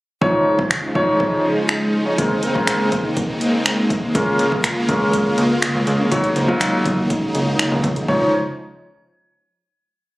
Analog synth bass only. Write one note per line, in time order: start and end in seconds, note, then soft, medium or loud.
4.15 4.25 C#2 loud
4.39 4.79 C#2 medium
4.89 5.28 C#2 loud
5.38 5.67 C#2 medium
5.75 5.85 C#2 medium
5.87 6.07 C#2 loud
6.12 6.21 C#2 loud
6.36 6.75 C#2 medium
6.85 7.25 C#2 loud
7.35 7.64 C#2 medium
7.72 7.81 C#2 medium
7.84 8.03 C#2 loud
8.08 8.31 C#2 medium